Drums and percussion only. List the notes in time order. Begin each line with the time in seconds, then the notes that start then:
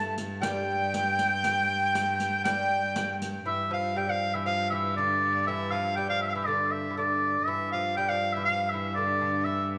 0.18 riq
0.43 riq
0.94 riq
1.19 riq
1.44 riq
1.95 riq
2.20 riq
2.45 riq
2.96 riq
3.22 riq